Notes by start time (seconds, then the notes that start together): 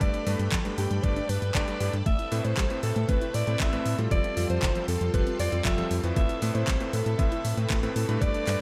Already playing: G2 A3 D4 G4 A4 B4 B5
0.01 G1 G3 D5 G5, kick, closed hi-hat
0.14 D4, closed hi-hat
0.26 G2 G3 A3 D4 G4 B4, open hi-hat
0.39 G2 G3, closed hi-hat
0.52 G1 F3, kick, clap, closed hi-hat
0.65 G2 G3 A3 D4 G4 B4, closed hi-hat
0.78 G2 D4 G4, open hi-hat
0.91 G2 G3, closed hi-hat
1.03 G1 G2 G3 A3 D4 G4 B4 D5, kick, closed hi-hat
1.16 D4, closed hi-hat
1.29 G2 G3 B4, open hi-hat
1.42 G2 G3, closed hi-hat
1.55 G1 G2 G3 A3 D4 G4 B4 D5, kick, clap, closed hi-hat
1.68 G3, closed hi-hat
1.80 G2 A2 G3 A3 D4 G4 B4, open hi-hat
1.93 G2 D4, closed hi-hat
2.06 A1 A3 C4 E5, kick, closed hi-hat
2.19 E4, closed hi-hat
2.32 A2 A3 C4 E4 B4, open hi-hat
2.45 A2 A3 C5, closed hi-hat
2.57 A1 G3, kick, clap, closed hi-hat
2.70 A2 A3 C4 E4 B4, closed hi-hat
2.83 A2 E4 A4, open hi-hat
2.96 A2 A3, closed hi-hat
3.09 A1 A2 A3 C4 E4 B4, kick, closed hi-hat
3.21 E4, closed hi-hat
3.34 A2 A3 D5, open hi-hat
3.47 A2 A3 C4 E4 B4, closed hi-hat
3.60 A1 A3 E5, kick, clap, closed hi-hat
3.73 A2 A3 C4 E4 B4, closed hi-hat
3.86 A2, open hi-hat
3.98 A2 G3 C4 E4 F4 A4, closed hi-hat
4.11 F1 F3 F4 A4 D5 G5 C6, kick, closed hi-hat
4.24 C4, closed hi-hat
4.37 F2 F3 G3 C4 F4 A4, open hi-hat
4.50 F2 F3 C5, closed hi-hat
4.63 F1 E3, kick, clap, closed hi-hat
4.75 F3 G3 C4 F4 A4, closed hi-hat
4.88 F2 C4 A4, open hi-hat
5.01 F2 F3, closed hi-hat
5.14 F1 F3 G3 C4 F4 A4 B4, kick, closed hi-hat
5.27 C4, closed hi-hat
5.39 F2 F3 D5, open hi-hat
5.52 F2 F3 G3 C4 F4 A4, closed hi-hat
5.65 F1 F3 E5, kick, clap, closed hi-hat
5.78 F3 G3 C4 F4 A4, closed hi-hat
5.91 F2 F3, open hi-hat
6.03 F2 A2 A3 C4 E4 B4, closed hi-hat
6.16 A1 A3 C4 E5 B5, kick, closed hi-hat
6.29 E4, closed hi-hat
6.42 A2 A3 C4 E4 B4, open hi-hat
6.55 A2 A3 C5, closed hi-hat
6.68 A1 G3, kick, clap, closed hi-hat
6.80 A2 A3 C4 E4 B4, closed hi-hat
6.93 A2 E4 A4, open hi-hat
7.06 A2 A3, closed hi-hat
7.19 A1 A2 A3 C4 E4 B4 E5, kick, closed hi-hat
7.32 E4, closed hi-hat
7.45 A2 A3, open hi-hat
7.57 A2 A3 C4 E4 B4, closed hi-hat
7.70 A1 A3, kick, clap, closed hi-hat
7.83 A2 A3 C4 E4 B4, closed hi-hat
7.96 A2 A3 A4, open hi-hat
8.09 G2 A2 A3 D4 E4 G4 B4, closed hi-hat
8.21 G1 G3 D5 G5, kick, closed hi-hat
8.34 D4, closed hi-hat
8.47 G2 G3 A3 D4 G4 B4, clap, open hi-hat